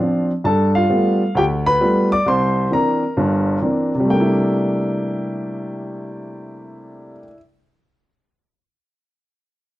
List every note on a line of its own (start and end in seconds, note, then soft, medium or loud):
0.00 0.30 F3 medium
0.00 0.30 C4 medium
0.00 0.30 D4 medium
0.00 0.26 F4 medium
0.00 0.24 F5 medium
0.44 0.83 G2 medium
0.44 0.73 A4 medium
0.44 0.72 A5 medium
0.75 0.89 F4 medium
0.75 1.37 F5 medium
0.89 1.21 G3 medium
0.89 1.21 A3 soft
0.89 1.21 B3 soft
0.89 1.21 F4 medium
1.35 1.74 D2 medium
1.35 1.45 G4 medium
1.35 1.43 G5 medium
1.66 2.08 B4 medium
1.66 2.08 B5 loud
1.81 2.12 G3 medium
1.81 2.12 A3 soft
1.81 2.12 B3 soft
1.81 2.12 F4 medium
2.12 2.26 D5 medium
2.12 2.27 D6 loud
2.26 2.65 C2 medium
2.26 2.70 C5 medium
2.26 2.69 C6 medium
2.71 3.02 E3 soft
2.71 3.02 A#3 soft
2.71 3.02 C4 soft
2.71 3.03 D4 medium
2.71 3.89 A#4 medium
2.71 3.89 A#5 medium
3.17 3.56 G1 medium
3.17 3.56 G2 medium
3.61 3.93 E3 medium
3.61 3.93 A#3 soft
3.61 3.93 C4 medium
3.61 3.94 D4 medium
3.95 7.13 C3 medium
4.00 7.18 G3 medium
4.05 7.23 A3 medium
4.10 7.28 A#3 medium
4.10 7.24 G5 medium
4.15 7.33 D4 medium
4.20 7.38 E4 medium